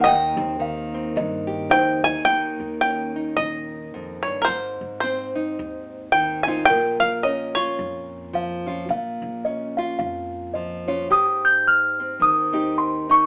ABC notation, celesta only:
X:1
M:4/4
L:1/8
Q:"Swing" 1/4=108
K:Ebmix
V:1 name="Celesta"
g2 f2 e2 c e | z8 | z8 | B2 d4 f2 |
f2 e f f2 e d | e' g' f'2 e'2 c' d' |]